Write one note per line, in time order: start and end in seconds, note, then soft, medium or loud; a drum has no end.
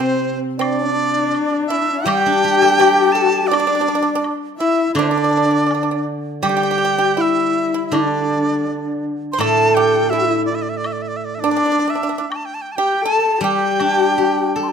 0.00 1.33 C3 medium
0.00 0.38 C4 medium
0.00 0.39 C4 medium
0.00 0.39 C5 medium
0.58 0.79 C4 medium
0.58 2.06 D4 medium
0.58 1.66 D5 medium
0.58 1.71 D5 medium
0.58 high woodblock medium
0.79 0.91 C#4 medium
0.91 1.67 D4 medium
1.35 high woodblock soft
1.67 2.04 E4 medium
1.67 2.07 E5 medium
1.67 2.08 E5 medium
2.04 4.23 G3 medium
2.04 3.55 G4 medium
2.04 2.75 G4 medium
2.04 3.14 G5 loud
2.04 3.51 G5 medium
2.04 high woodblock medium
2.26 3.70 D4 soft
2.44 3.88 G4 soft
2.62 4.06 A4 soft
2.80 3.13 G4 medium
2.80 4.24 D5 soft
2.80 high woodblock soft
3.12 3.49 A4 medium
3.12 3.49 A5 loud
3.47 4.31 D5 loud
3.47 4.32 D5 medium
3.51 3.58 D4 medium
3.51 4.34 D4 medium
3.51 high woodblock medium
3.60 3.66 D4 medium
3.67 3.73 D4 medium
3.75 3.80 D4 medium
3.81 3.87 D4 medium
3.88 3.94 D4 medium
3.95 4.01 D4 medium
4.03 4.09 D4 medium
4.15 4.32 D4 medium
4.24 high woodblock soft
4.56 4.97 E4 medium
4.56 4.92 E5 medium
4.60 4.94 E4 medium
4.94 7.18 D3 medium
4.94 5.09 D4 medium
4.94 5.08 D5 medium
4.94 5.03 D5 medium
4.94 high woodblock medium
4.99 5.10 D4 medium
4.99 5.10 C5 medium
5.08 5.16 D4 medium
5.08 6.04 D4 medium
5.08 6.06 D5 medium
5.08 6.02 D5 medium
5.17 5.23 D4 soft
5.24 5.30 D4 soft
5.31 5.36 D4 soft
5.37 5.44 D4 soft
5.45 5.50 D4 soft
5.51 5.57 D4 soft
5.58 5.65 D4 soft
5.66 5.73 D4 soft
5.71 5.82 D4 soft
5.71 high woodblock soft
5.71 low woodblock soft
5.83 5.90 D4 soft
5.91 5.98 D4 soft
6.43 8.66 G3 medium
6.43 6.48 G4 medium
6.43 7.19 G4 medium
6.43 7.23 G5 loud
6.43 high woodblock soft
6.49 6.55 G4 medium
6.57 6.62 G4 medium
6.63 6.70 G4 medium
6.71 6.77 G4 medium
6.78 6.83 G4 medium
6.85 6.94 G4 medium
6.98 7.16 G4 medium
7.17 7.70 E4 medium
7.17 7.94 E4 medium
7.21 7.87 E5 medium
7.74 7.92 E4 medium
7.87 7.98 E5 medium
7.92 10.10 D3 medium
7.92 9.03 D4 medium
7.92 8.99 D4 medium
7.92 high woodblock medium
7.96 9.05 D5 medium
9.32 9.40 C5 medium
9.32 9.41 C6 medium
9.38 11.56 A2 medium
9.38 9.73 A4 medium
9.38 10.15 A4 medium
9.38 9.76 A5 loud
9.38 high woodblock medium
9.75 10.09 G4 medium
9.75 10.11 G5 medium
10.10 10.45 E4 medium
10.10 10.48 E4 medium
10.10 10.45 E5 loud
10.46 10.56 D5 medium
10.55 10.64 E5 medium
10.62 10.71 D5 medium
10.69 10.79 E5 medium
10.77 10.88 D5 medium
10.84 10.94 E5 medium
10.84 high woodblock soft
10.93 11.04 D5 medium
11.02 11.10 E5 medium
11.08 11.18 D5 medium
11.16 11.26 E5 medium
11.25 11.36 D5 medium
11.35 11.41 E5 medium
11.40 12.26 D4 medium
11.40 11.50 D4 medium
11.40 11.91 D5 medium
11.51 11.55 D4 medium
11.56 11.63 D4 medium
11.56 low woodblock soft
11.66 11.71 D4 soft
11.72 11.78 D4 medium
11.79 11.86 D4 soft
11.88 11.94 D4 soft
11.88 12.32 E5 medium
11.95 12.02 D4 soft
12.03 12.08 D4 medium
12.09 12.16 D4 soft
12.18 12.24 D4 medium
12.30 12.37 G5 medium
12.30 high woodblock medium
12.36 12.47 A5 medium
12.45 12.56 G5 medium
12.54 12.63 A5 medium
12.62 12.73 G5 medium
12.72 13.03 G5 medium
12.72 12.77 A5 medium
12.78 13.03 G4 medium
12.78 13.02 G4 medium
12.78 13.06 G5 medium
13.02 13.40 A4 medium
13.02 13.36 A5 medium
13.02 13.45 A5 medium
13.36 14.72 G4 medium
13.36 13.43 A5 medium
13.41 14.72 G3 medium
13.41 14.72 G4 medium
13.41 14.72 G5 medium
13.41 14.56 G5 medium
13.80 14.72 D4 soft
13.80 high woodblock medium
14.18 14.72 G4 soft
14.54 14.72 A4 soft
14.54 14.65 A5 medium
14.63 14.71 C6 medium
14.69 14.72 A5 medium